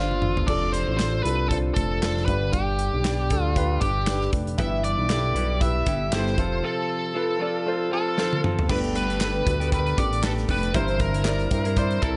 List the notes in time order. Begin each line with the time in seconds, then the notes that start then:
Already playing: G1 G2 G3 D4 F4 A4 B4 C5
0.11 high tom
0.22 mid tom
0.37 floor tom
0.47 F1 C3 D4 F4 A4 D5, kick, crash
0.72 C5, closed hi-hat
0.88 A1
0.97 D4 F4 A4 C5, snare, clap, closed hi-hat
1.23 C2 D4 F4 A4 B4, closed hi-hat
1.49 D4 F4 A4 C5, kick, closed hi-hat
1.74 F1 A4, kick, closed hi-hat
2.02 F1 D4 F4 C5, snare, clap, closed hi-hat
2.17 snare
2.26 G1 G2 D3 D4 G4 B4, kick, closed hi-hat
2.53 G1 G4, kick, closed hi-hat
2.79 closed hi-hat
2.94 B1
3.04 D4 G4 D5, snare, clap, closed hi-hat
3.30 D2 D4 G4 A4, kick, closed hi-hat
3.43 F4
3.55 D4 G4 B4, kick, closed hi-hat
3.81 G1 G4, kick, closed hi-hat
4.07 D4 G4 B4, snare, clap, closed hi-hat
4.22 snare
4.33 F1, kick, closed hi-hat
4.47 closed hi-hat
4.58 G1 G2 E3 G3 B3 E4 G4 B4 E5, kick, closed hi-hat
4.84 D5, closed hi-hat
4.98 B1
5.09 G3 B3 E4 G4 A4 D5, snare, clap, closed hi-hat
5.35 B1 G3 B3 E4 G4 B4, closed hi-hat
5.60 E4 G4 B4 E5, kick, closed hi-hat
5.86 G1 G3 B3 E4 G4, kick, closed hi-hat
6.12 G1 G3 B3 E4 G4 A4 C5, snare, clap, closed hi-hat
6.27 snare
6.37 F1 C3 F3 C4 F4 A4 C5, kick, closed hi-hat
6.63 F3 C4 F4 A4
7.14 F3 C4 F4 A4 B4
7.39 F3 C4 F4 A4 D5
7.66 F4 A4 C5
7.90 F3 C4 F4 A4
8.17 F3 C4 F4 A4 C5, snare
8.33 high tom
8.43 F3 C4 F4 A4, mid tom
8.59 floor tom
8.69 G1 G2 D3 A3 B3 D4 G4 A4 B4, kick, crash
8.84 closed hi-hat
8.95 B4, closed hi-hat
9.08 A3 B3 D4 G4, closed hi-hat
9.20 G4 A4 B4, snare, clap
9.46 D2 G4 A4 B4, kick, closed hi-hat
9.60 A3 B3 D4 G4, closed hi-hat
9.72 G4 A4 A#4 B4, kick, closed hi-hat
9.79 B4
9.87 closed hi-hat
9.97 A1 A3 B3 D4 G4 D5, kick, closed hi-hat
10.13 closed hi-hat
10.22 A3 B3 D4 G4 A4 B4, snare, clap
10.38 snare, closed hi-hat
10.48 F1 A3 B3 D4 G4 B4, kick, open hi-hat
10.63 closed hi-hat
10.73 G1 G2 E3 G3 C4 E4 A#4 C5, kick, closed hi-hat
10.88 closed hi-hat
10.99 A#4, kick, closed hi-hat
11.13 G3 C4 E4 A#4, closed hi-hat
11.25 E4 A#4, snare, clap
11.27 D5, clap
11.40 closed hi-hat
11.51 G2 E4 A#4 C5, kick, closed hi-hat
11.64 G3 C4 E4 A#4, closed hi-hat
11.76 E4 A#4 C5 D5, kick, closed hi-hat
11.91 closed hi-hat
12.02 C2 G3 C4 E4 A4 A#4, kick, closed hi-hat